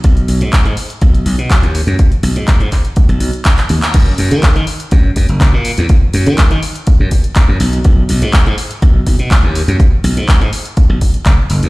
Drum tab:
CC |----------------|----------------|x---------------|----------------|
HH |xxoxxxoxxxoxxxox|xxoxxxoxxxoxxxox|x-oxxxoxx-oxx-ox|x-oxxxoxx-oxx-ox|
CP |----x-------x---|----x-x-----xx-x|----x-------x---|----x-------x---|
BD |o---o---o---o---|o---o-o-o---o---|o---o---o-o-o---|o---o---o-o-o---|

CC |----------------|----------------|
HH |x-oxxxoxx-oxx-ox|x-oxxxoxx-oxx-ox|
CP |----x-------x---|----x-------x---|
BD |o---o---o-o-o---|o---o---o-o-o---|